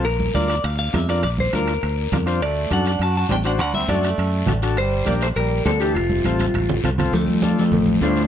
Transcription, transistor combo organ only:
\new Staff \with { instrumentName = "Transistor combo organ" } { \time 4/4 \key d \minor \tempo 4 = 203 r4 <d' f' bes'>8 r4. <d' f' bes'>8 <d' f' bes'>8 | r4 <d' f' bes'>8 r4. <d' f' bes'>8 <d' f' c''>8 | r4 <d' fis' a'>8 r4. <d' fis' c''>8 <d' fis' c''>8 | r4 <d' fis' a'>8 r4. <d' fis' a'>8 <d' fis' a'>8 |
r4 <d' g' bes'>8 r4. <d' g' c''>8 <d' g' a'>8 | r4 <c' f' a'>8 r4. <c' f' a'>8 <c' f' a'>8 | r4 <d' f' a'>8 r4. <d' f' c''>8 r8 | }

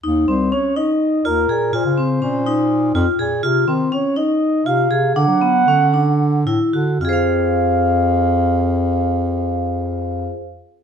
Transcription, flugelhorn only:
\new Staff \with { instrumentName = "Flugelhorn" } { \time 7/8 \key f \minor \tempo 4 = 119 r8 c''8 des''8 ees''4 bes'4 | c''2. r8 | r8 c''8 des''8 ees''4 f''4 | fis''2~ fis''8 r4 |
f''2.~ f''8~ | f''2.~ f''8 | }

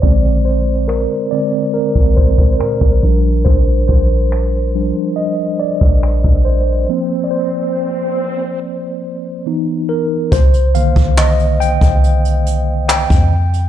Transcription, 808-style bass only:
\new Staff \with { instrumentName = "808-style bass" } { \clef bass \time 4/4 \key c \minor \tempo 4 = 70 bes,,4~ bes,,16 r4 bes,,8. bes,16 bes,,16 bes,,8 | bes,,8 bes,,4~ bes,,16 r4 bes,,8 bes,,8. | r1 | c,8. c,4 c,4. f,8. | }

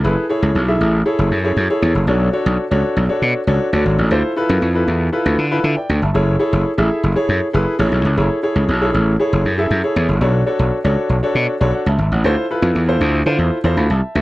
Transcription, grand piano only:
\new Staff \with { instrumentName = "Grand piano" } { \time 4/4 \key fis \minor \tempo 4 = 118 << { r1 | r1 | r2. <b' e''>16 <d'' g''>8 <e'' a''>16~ | <e'' a''>16 r2. r8. |
r1 | r2. <cis'' fis''>16 <e'' a''>8 <cis'' fis''>16~ | <cis'' fis''>16 r2 r8. <f'' b''>16 <e'' a''>8 <b' e''>16 | } \\ { <e' gis' a' b'>8 <e' gis' a' cis''>8 r16 <e' gis' a' e''>8 r16 <e' gis' a' cis''>8 r16 <e' gis' a' cis''>8 <e' gis' a' cis''>8 r16 | <d' fis' a' cis''>8 <d' fis' a' cis''>8 r16 <d' fis' a' cis''>8 r16 <d' fis' a' cis''>8 r16 <d' fis' a' cis''>8 <d' fis' a' cis''>8 r16 | <e' f' a' c''>8 <e' f' a' b'>8 r16 <e' f' a' b'>8 r16 <e' f' a' b'>8 r16 <e' f' a' b'>8 r8. | <e' gis' a' cis''>8 <e' gis' a' cis''>8 r16 <e' gis' a' e''>8 r16 <e' gis' a' cis''>8 r16 <e' gis' a' b'>8 <e' gis' a' cis''>8 r16 |
<e' gis' a' cis''>8 <e' gis' a' cis''>8 r16 <e' gis' a' cis''>8 r16 <e' gis' a' cis''>8 r16 <e' gis' a' e''>8 <e' gis' a' cis''>8 r16 | <d' fis' a' cis''>8 <d' fis' a' cis''>8 r16 <d' fis' a' cis''>8 r16 <d' fis' a' cis''>8 r16 <d' fis' a' cis''>8 r8. | <e' f' a' c''>8 <e' f' a' b'>8 r16 <e' f' a' c''>8 r16 <e' f' a' c''>8 r16 <e' f' a' c''>8 r8. | } >> }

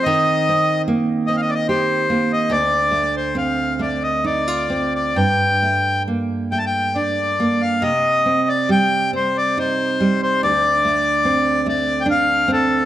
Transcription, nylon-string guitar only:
\new Staff \with { instrumentName = "Nylon-string guitar" } { \time 3/4 \key d \phrygian \tempo 4 = 70 ees8 c'8 bes8 c'8 g'8 bes8 | d,8 a8 c'8 a8 ees'16 f'16 c'8 | g,8 a8 bes8 a8 d'8 bes8 | c8 c'8 g8 c'8 ees'8 g8 |
d,8 a8 c'8 a8 d'8 c'8 | }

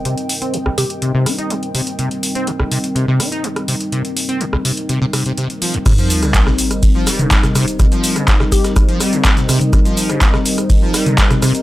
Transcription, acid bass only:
\new Staff \with { instrumentName = "Acid bass" } { \clef bass \time 4/4 \key c \minor \tempo 4 = 124 c16 r8 c'16 c16 c,16 c16 r16 c16 c16 ees'16 ees'16 f16 r16 c16 r16 | c16 r8 c'16 c16 c,16 c16 r16 c16 c16 ees'16 ees'16 f16 r16 c16 r16 | c16 r8 c'16 c16 c,16 c16 r16 c16 c16 c16 c16 c16 r16 f16 c,16 | c16 f8 des16 c'16 c16 r8. f16 g16 des16 c'16 c16 c16 r16 |
c16 f8 des16 c'16 c16 r8. f16 g16 des16 c'16 c16 c16 r16 | c16 f8 des16 c'16 c16 r8. f16 g16 des16 c'16 c16 c16 r16 | }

